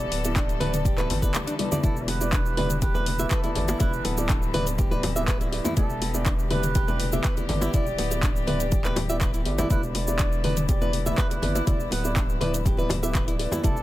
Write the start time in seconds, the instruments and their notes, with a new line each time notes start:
Already playing: string section D3 E3 G3 B3 A4, muted trumpet D5
0.11 analog synth bass D1, nylon-string guitar B3, open hi-hat
0.25 felt piano B3 E4 G4 D5, closed hi-hat, shaker
0.36 nylon-string guitar D4, muted trumpet D5, kick, clap, closed hi-hat, shaker
0.49 closed hi-hat, shaker
0.60 felt piano B3 E4 G4 D5, nylon-string guitar B4, open hi-hat, mid tom, high conga, low conga
0.74 closed hi-hat, mid tom, shaker
0.85 nylon-string guitar G4, kick, closed hi-hat, low conga, shaker
0.98 felt piano B3 E4 G4 D5, nylon-string guitar B4, clap, closed hi-hat, high conga, shaker
1.10 analog synth bass G1, open hi-hat, low conga
1.22 felt piano B3 E4 G4 D5, nylon-string guitar B4, kick, closed hi-hat, shaker
1.34 clap, closed hi-hat, high conga, shaker
1.47 nylon-string guitar D4, closed hi-hat, shaker
1.59 felt piano B3 E4 G4 D5, open hi-hat, high tom, high conga
1.72 felt piano B3 E4 G4 D5, nylon-string guitar D5, closed hi-hat, mid tom, low conga, shaker
1.83 analog synth bass E1, felt piano B3 E4 G4 D5, string section E4, nylon-string guitar E4, muted trumpet A4, kick, closed hi-hat, high conga, shaker
1.97 shaker
2.02 muted trumpet D5
2.08 nylon-string guitar B3, muted trumpet B4, open hi-hat, high bongo, low bongo
2.21 felt piano B3 E4 G4 D5, shaker
2.32 nylon-string guitar D4, kick, clap, closed hi-hat, shaker
2.46 shaker
2.57 felt piano B3 E4 G4 D5, nylon-string guitar B4, open hi-hat, mid tom, high conga, low conga
2.70 closed hi-hat, mid tom, shaker
2.82 nylon-string guitar G4, muted trumpet B4, kick, closed hi-hat, low bongo, low conga, shaker
2.94 felt piano B3 E4 G4 D5, nylon-string guitar B4, low conga, shaker
3.06 open hi-hat, high conga
3.19 felt piano B3 E4 G4 E5, nylon-string guitar E5, high conga, shaker
3.31 muted trumpet A4, nylon-string guitar B4, kick, clap, closed hi-hat, shaker
3.44 felt piano B3 E4 G4 D5, nylon-string guitar E4, closed hi-hat, high conga, shaker
3.56 analog synth bass G1, felt piano B3 E4 G4 D5, open hi-hat, low bongo, low conga
3.68 nylon-string guitar E4, closed hi-hat, high bongo, shaker
3.80 analog synth bass E1, felt piano B3 E4 G4 D5, nylon-string guitar E4, muted trumpet B4, kick, closed hi-hat, high conga, shaker
3.93 shaker
4.04 analog synth bass D1, nylon-string guitar B3, muted trumpet A4, open hi-hat, high bongo, low bongo
4.18 felt piano B3 E4 G4 D5, shaker
4.29 nylon-string guitar D4, kick, clap, closed hi-hat, shaker
4.42 shaker
4.54 felt piano B3 E4 G4 D5, nylon-string guitar B4, open hi-hat, mid tom, high conga, low conga
4.67 closed hi-hat, shaker
4.78 nylon-string guitar G4, kick, closed hi-hat, low bongo, low conga, shaker
4.91 felt piano B3 E4 G4 D5, nylon-string guitar B4, high conga, shaker
5.03 open hi-hat, high bongo, low conga
5.16 felt piano B3 E4 G4 E5, nylon-string guitar E5, shaker
5.28 nylon-string guitar B4, kick, clap, closed hi-hat, high conga, shaker
5.41 felt piano B3 E4 G4 D5, nylon-string guitar E4, closed hi-hat, shaker
5.52 felt piano B3 E4 G4 D5, open hi-hat
5.64 nylon-string guitar E4, closed hi-hat, high bongo, low bongo, low conga, shaker
5.77 analog synth bass E1, felt piano B3 E4 G4 D5, string section G4, muted trumpet A4, kick, closed hi-hat, high conga, shaker
5.90 shaker
6.01 nylon-string guitar B3, open hi-hat, high bongo, low bongo
6.14 felt piano B3 E4 G4 D5, shaker
6.26 nylon-string guitar D4, kick, clap, closed hi-hat, shaker
6.39 shaker
6.51 felt piano B3 E4 G4 D5, nylon-string guitar B4, muted trumpet B4, open hi-hat, mid tom, high conga, low conga
6.63 closed hi-hat, mid tom, shaker
6.75 nylon-string guitar G4, kick, closed hi-hat, low bongo, low conga, shaker
6.88 felt piano B3 E4 G4 D5, nylon-string guitar B4, low conga, shaker
7.00 open hi-hat, high conga
7.13 felt piano B3 E4 G4 E5, nylon-string guitar E5, high conga, shaker
7.24 nylon-string guitar B4, kick, clap, closed hi-hat, shaker
7.37 felt piano B3 E4 G4 D5, nylon-string guitar E4, closed hi-hat, high conga, shaker
7.49 analog synth bass G1, felt piano B3 E4 G4 D5, open hi-hat, low bongo, low conga
7.61 nylon-string guitar E4, closed hi-hat, high bongo, shaker
7.74 analog synth bass E1, felt piano E4 G4 D5, nylon-string guitar E4, muted trumpet D5, kick, closed hi-hat, high conga, shaker
7.87 shaker
7.98 analog synth bass D1, nylon-string guitar B3, open hi-hat, high bongo, low bongo
8.11 felt piano B3 E4 G4 D5, closed hi-hat, shaker
8.23 nylon-string guitar D4, muted trumpet D5, kick, clap, closed hi-hat, shaker
8.36 shaker
8.47 felt piano B3 E4 G4 D5, nylon-string guitar B4, open hi-hat, mid tom, high conga, low conga
8.60 closed hi-hat, shaker
8.72 nylon-string guitar G4, kick, closed hi-hat, low bongo, low conga, shaker
8.85 felt piano B3 E4 G4 D5, nylon-string guitar B4, clap, closed hi-hat, high conga, shaker
8.96 open hi-hat, high bongo, low conga
9.10 felt piano B3 E4 G4 D5, nylon-string guitar E5, shaker
9.21 nylon-string guitar B4, kick, clap, closed hi-hat, high conga, shaker
9.34 nylon-string guitar E4, closed hi-hat, shaker
9.45 analog synth bass G1, felt piano B3 E4 G4 D5, open hi-hat
9.58 felt piano B3 E4 G4 D5, nylon-string guitar E4, closed hi-hat, high bongo, low bongo, low conga, shaker
9.70 analog synth bass E1, felt piano B3 E4 G4 D5, string section E4, nylon-string guitar E4, muted trumpet B4, kick, closed hi-hat, high conga, shaker
9.83 shaker
9.95 nylon-string guitar B3, muted trumpet D5, open hi-hat, high bongo, low bongo
10.08 felt piano B3 E4 G4 D5, shaker
10.19 nylon-string guitar D4, kick, clap, closed hi-hat, shaker
10.32 shaker
10.44 felt piano B3 E4 G4 D5, nylon-string guitar B4, open hi-hat, mid tom, high conga, low conga
10.57 closed hi-hat, mid tom, shaker
10.68 nylon-string guitar G4, muted trumpet D5, kick, closed hi-hat, low bongo, low conga, shaker
10.81 felt piano B3 E4 G4 D5, nylon-string guitar B4, low conga, shaker
10.93 open hi-hat, high conga
11.06 felt piano B3 E4 G4 E5, nylon-string guitar E5, high conga, shaker
11.18 nylon-string guitar B4, muted trumpet B4, kick, clap, closed hi-hat, shaker
11.30 felt piano B3 E4 G4 D5, nylon-string guitar E4, closed hi-hat, high conga, shaker
11.42 analog synth bass G1, felt piano B3 E4 G4 D5, open hi-hat, low bongo, low conga
11.55 nylon-string guitar E4, closed hi-hat, high bongo, shaker
11.67 analog synth bass E1, felt piano B3 E4 G4 D5, nylon-string guitar E4, muted trumpet D5, kick, closed hi-hat, high conga, shaker
11.80 shaker
11.91 analog synth bass D1, nylon-string guitar B3, muted trumpet B4, open hi-hat, high bongo, low bongo
12.04 felt piano B3 E4 G4 D5, shaker
12.16 nylon-string guitar D4, kick, clap, closed hi-hat, shaker
12.29 shaker
12.41 felt piano B3 E4 G4 D5, nylon-string guitar B4, open hi-hat, mid tom, high conga, low conga
12.54 closed hi-hat, shaker
12.66 nylon-string guitar G4, kick, closed hi-hat, low bongo, low conga, shaker
12.77 felt piano B3 E4 G4 D5, nylon-string guitar B4, high conga, shaker
12.89 open hi-hat, high bongo, low conga
13.03 felt piano B3 E4 G4 E5, nylon-string guitar E5, shaker
13.15 nylon-string guitar B4, kick, clap, closed hi-hat, high conga, shaker
13.28 felt piano B3 E4 G4 D5, nylon-string guitar E4, closed hi-hat, shaker
13.39 felt piano B3 E4 G4 D5, open hi-hat
13.51 nylon-string guitar E4, closed hi-hat, high bongo, low bongo, low conga, shaker
13.64 analog synth bass E1, felt piano B3 E4 G4 D5, nylon-string guitar E4, string section A4, muted trumpet A4, kick, closed hi-hat, high conga, shaker
13.77 shaker